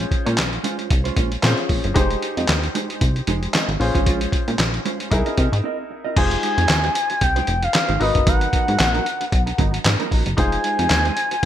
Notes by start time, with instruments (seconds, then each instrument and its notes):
Already playing: grand piano C#4 F4 G#4 C5
0.00 muted clean electric guitar stroke, closed hi-hat
0.11 muted clean electric guitar stroke, kick, closed hi-hat
0.25 analog synth bass A#2, clean electric guitar G#3 C#4 F4 C#5, closed hi-hat
0.37 analog synth bass A#1, muted clean electric guitar stroke, snare, clap, closed hi-hat
0.52 muted clean electric guitar stroke, closed hi-hat
0.63 clean electric guitar G#3 C#4 F4 C5, closed hi-hat
0.78 clean electric guitar G#3 C#4 F4 C5, closed hi-hat
0.90 analog synth bass C2, muted clean electric guitar stroke, kick, closed hi-hat
1.04 clean electric guitar G#3 C#4 F4 C5, closed hi-hat
1.16 analog synth bass A#1, clean electric guitar G#3 C#4 F4 C5, kick, closed hi-hat
1.31 muted clean electric guitar stroke, closed hi-hat
1.43 analog synth bass A#2, grand piano C4 F4 G#4 C5, muted clean electric guitar stroke, snare, clap, closed hi-hat
1.49 grand piano C#4
1.58 muted clean electric guitar stroke, closed hi-hat
1.69 analog synth bass A#1, kick, open hi-hat
1.84 analog synth bass G1, muted clean electric guitar stroke, closed hi-hat
1.94 analog synth bass F1, clean electric guitar G#3 D#4 G4 C5, grand piano D#4 G4 G#4 C5, kick, closed hi-hat
2.10 muted clean electric guitar stroke, closed hi-hat
2.22 muted clean electric guitar stroke, closed hi-hat
2.37 analog synth bass F2, clean electric guitar G#3 D#4 G4 D#5, closed hi-hat
2.48 analog synth bass D#2, snare, clap, closed hi-hat
2.63 muted clean electric guitar stroke, closed hi-hat
2.75 clean electric guitar G#3 D#4 G4 C5, closed hi-hat
2.89 clean electric guitar G#3 D#4 G4 C5, closed hi-hat
3.01 analog synth bass C2, kick, closed hi-hat
3.16 muted clean electric guitar stroke, closed hi-hat
3.27 analog synth bass F1, clean electric guitar G#3 D#4 G4 C5, closed hi-hat
3.42 muted clean electric guitar stroke, closed hi-hat
3.54 clean electric guitar G#3 D#4 G4 D#5, snare, clap, closed hi-hat
3.68 analog synth bass G#1, muted clean electric guitar stroke, closed hi-hat
3.80 analog synth bass A#1, grand piano C#4 F4 G#4 C5, muted clean electric guitar stroke, open hi-hat
3.95 analog synth bass G#1, clean electric guitar G#3 C#4 F4 C5, kick, closed hi-hat
4.06 analog synth bass A#1, clean electric guitar G#3 C#4 F4 C5, kick, closed hi-hat
4.21 muted clean electric guitar stroke, closed hi-hat
4.32 muted clean electric guitar stroke, kick, closed hi-hat
4.48 analog synth bass A#2, clean electric guitar G#3 C#4 F4 C#5, closed hi-hat
4.59 analog synth bass A#1, muted clean electric guitar stroke, snare, clap, closed hi-hat
4.74 muted clean electric guitar stroke, closed hi-hat
4.85 clean electric guitar G#3 C#4 F4 C5, closed hi-hat
5.00 clean electric guitar G#3 C#4 F4 C5, closed hi-hat
5.11 analog synth bass C2, grand piano D#4 E4 G#4 A#4, muted clean electric guitar stroke, kick, closed hi-hat
5.26 clean electric guitar C4 E4 A#4 D#5, closed hi-hat
5.37 analog synth bass C3, clean electric guitar C4 E4 A#4 D#5, kick, closed hi-hat
5.52 analog synth bass G#2, muted clean electric guitar stroke, closed hi-hat
5.64 clean electric guitar C4 E4 A#4 D#5
5.79 muted clean electric guitar stroke
5.90 muted clean electric guitar stroke
6.04 clean electric guitar C4 E4 A#4 D#5
6.16 analog synth bass F1, clean electric guitar G#3 D#4 G4 C5, grand piano D#4 F4 G#4 C5, analog synth lead G#5, kick, closed hi-hat, crash
6.31 closed hi-hat
6.43 clean electric guitar G#3 D#4 G4 C5, closed hi-hat
6.57 analog synth bass F2, clean electric guitar G#3 D#4 G4 C5, closed hi-hat
6.69 analog synth bass D#2, muted clean electric guitar stroke, snare, clap, closed hi-hat
6.83 clean electric guitar G#3 D#4 G4 C5, closed hi-hat
6.95 muted clean electric guitar stroke, closed hi-hat
7.10 muted clean electric guitar stroke, closed hi-hat
7.21 analog synth bass C2, analog synth lead G5, muted clean electric guitar stroke, kick, closed hi-hat
7.36 clean electric guitar G#3 D#4 G4 C5, closed hi-hat
7.47 analog synth bass F1, muted clean electric guitar stroke, closed hi-hat
7.62 analog synth lead F5, muted clean electric guitar stroke, closed hi-hat
7.74 muted clean electric guitar stroke, snare, clap, closed hi-hat
7.88 analog synth bass G#1, clean electric guitar G#3 D#4 G4 C5, closed hi-hat
8.00 analog synth bass G#1, clean electric guitar F#3 B3 D#4 B4, grand piano D#4 F#4 A#4 B4, analog synth lead D#5, open hi-hat
8.15 analog synth bass F#1, muted clean electric guitar stroke, kick, closed hi-hat
8.26 analog synth bass G#1, clean electric guitar F#3 B3 D#4 A#4, analog synth lead F#5, kick, closed hi-hat
8.41 closed hi-hat
8.52 clean electric guitar F#3 B3 D#4 A#4, kick, closed hi-hat
8.67 analog synth bass G#2, clean electric guitar F#3 B3 D#4 A#4, closed hi-hat
8.79 analog synth bass A#1, muted clean electric guitar stroke, snare, clap, closed hi-hat
8.94 clean electric guitar F#3 B3 D#4 A#4, closed hi-hat
9.05 muted clean electric guitar stroke, closed hi-hat
9.20 muted clean electric guitar stroke, closed hi-hat
9.32 analog synth bass B1, kick, closed hi-hat
9.46 muted clean electric guitar stroke, closed hi-hat
9.58 analog synth bass G#1, clean electric guitar F#3 B3 D#4 A#4, kick, closed hi-hat
9.73 muted clean electric guitar stroke, closed hi-hat
9.85 analog synth bass G#2, muted clean electric guitar stroke, snare, clap, closed hi-hat
10.00 clean electric guitar F#3 B3 D#4 A#4, closed hi-hat
10.11 analog synth bass A#1, clean electric guitar F#3 B3 D#4 A#4, kick, open hi-hat
10.26 analog synth bass F#1, muted clean electric guitar stroke, closed hi-hat
10.37 analog synth bass F1, clean electric guitar G#3 D#4 G4 C5, grand piano D#4 F4 G#4 C5, analog synth lead G#5, kick, closed hi-hat
10.52 closed hi-hat
10.64 clean electric guitar G#3 D#4 G4 C5, closed hi-hat
10.78 analog synth bass F2, clean electric guitar G#3 D#4 G4 C5, closed hi-hat
10.90 analog synth bass D#2, muted clean electric guitar stroke, snare, clap, closed hi-hat
11.05 clean electric guitar G#3 D#4 G4 C5, closed hi-hat
11.17 muted clean electric guitar stroke, closed hi-hat
11.31 muted clean electric guitar stroke, closed hi-hat